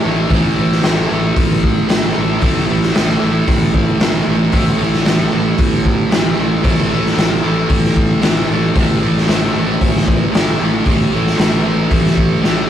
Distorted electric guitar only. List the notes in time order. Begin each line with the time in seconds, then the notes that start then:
Already playing: A2
0.04 A3
0.08 E3
0.30 A2 E3
0.34 A3
0.56 A3
0.61 E3
0.82 A2 E3
0.87 A3
1.09 A3
1.14 E3
1.88 A2 E3
1.93 A3
2.14 A3
2.19 E3
2.40 A2 E3
2.45 A3
2.67 A3
2.71 E3
2.93 A2 E3
2.98 A3
3.19 A3
3.24 E3
3.99 A2 E3
4.03 A3
4.25 A3
4.30 E3
4.52 A2 E3
4.57 A3
4.77 A3
4.82 E3
5.04 A2 E3
5.09 A3
5.31 A3
5.36 E3
6.10 A2 E3
6.15 A3
6.36 A3
6.41 E3
6.63 A2 E3
6.68 A3
6.90 A3
6.95 E3
7.15 A2 E3
7.20 A3
7.43 A3
7.48 E3
8.22 A2 E3
8.26 A3
8.49 A3
8.54 E3
8.75 A2 E3
8.80 A3
9.01 A3
9.07 E3
9.28 A2 E3
9.33 A3
9.54 A3
9.59 E3
10.32 A2 E3
10.37 A3
10.59 A3
10.64 E3
10.86 A2 E3
10.90 A3
11.12 A3
11.17 E3
11.37 A2 E3
11.42 A3
11.64 A3
11.68 E3
12.42 A2 E3
12.47 A3